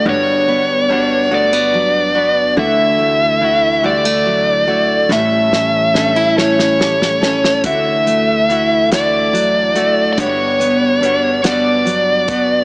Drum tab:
HH |------------|------------|------------|x-x-x-x-x-x-|
SD |------------|------------|o-o-o-oooooo|------o-----|
BD |------------|------------|------------|o-----------|

HH |x-x-x-x-x-x-|
SD |------o-----|
BD |o---------o-|